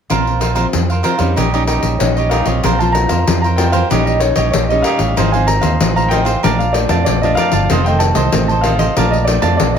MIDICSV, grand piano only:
0, 0, Header, 1, 2, 480
1, 0, Start_track
1, 0, Tempo, 632911
1, 79, Time_signature, 4, 2, 24, 8
1, 7422, End_track
2, 0, Start_track
2, 0, Title_t, "Grand piano"
2, 0, Program_c, 0, 0
2, 1509, Note_on_c, 0, 73, 67
2, 1627, Note_off_c, 0, 73, 0
2, 1636, Note_on_c, 0, 75, 62
2, 1741, Note_on_c, 0, 77, 78
2, 1750, Note_off_c, 0, 75, 0
2, 2086, Note_off_c, 0, 77, 0
2, 2113, Note_on_c, 0, 81, 73
2, 2217, Note_on_c, 0, 82, 78
2, 2229, Note_off_c, 0, 81, 0
2, 2578, Note_off_c, 0, 82, 0
2, 2589, Note_on_c, 0, 82, 72
2, 2627, Note_off_c, 0, 82, 0
2, 2702, Note_on_c, 0, 79, 79
2, 3046, Note_off_c, 0, 79, 0
2, 3073, Note_on_c, 0, 75, 72
2, 3183, Note_on_c, 0, 73, 73
2, 3202, Note_off_c, 0, 75, 0
2, 3414, Note_off_c, 0, 73, 0
2, 3426, Note_on_c, 0, 73, 76
2, 3464, Note_off_c, 0, 73, 0
2, 3556, Note_on_c, 0, 75, 71
2, 3657, Note_on_c, 0, 77, 85
2, 3683, Note_off_c, 0, 75, 0
2, 4004, Note_off_c, 0, 77, 0
2, 4034, Note_on_c, 0, 80, 74
2, 4148, Note_on_c, 0, 82, 80
2, 4162, Note_off_c, 0, 80, 0
2, 4508, Note_off_c, 0, 82, 0
2, 4520, Note_on_c, 0, 82, 74
2, 4615, Note_on_c, 0, 79, 82
2, 4633, Note_off_c, 0, 82, 0
2, 4962, Note_off_c, 0, 79, 0
2, 4995, Note_on_c, 0, 77, 73
2, 5102, Note_on_c, 0, 74, 72
2, 5110, Note_off_c, 0, 77, 0
2, 5333, Note_off_c, 0, 74, 0
2, 5344, Note_on_c, 0, 74, 71
2, 5473, Note_on_c, 0, 75, 75
2, 5477, Note_off_c, 0, 74, 0
2, 5575, Note_on_c, 0, 77, 99
2, 5589, Note_off_c, 0, 75, 0
2, 5950, Note_on_c, 0, 79, 76
2, 5959, Note_off_c, 0, 77, 0
2, 6058, Note_on_c, 0, 81, 72
2, 6080, Note_off_c, 0, 79, 0
2, 6404, Note_off_c, 0, 81, 0
2, 6430, Note_on_c, 0, 81, 74
2, 6531, Note_on_c, 0, 77, 78
2, 6547, Note_off_c, 0, 81, 0
2, 6880, Note_off_c, 0, 77, 0
2, 6907, Note_on_c, 0, 75, 78
2, 6945, Note_off_c, 0, 75, 0
2, 7012, Note_on_c, 0, 74, 76
2, 7249, Note_off_c, 0, 74, 0
2, 7260, Note_on_c, 0, 74, 75
2, 7382, Note_off_c, 0, 74, 0
2, 7390, Note_on_c, 0, 75, 67
2, 7422, Note_off_c, 0, 75, 0
2, 7422, End_track
0, 0, End_of_file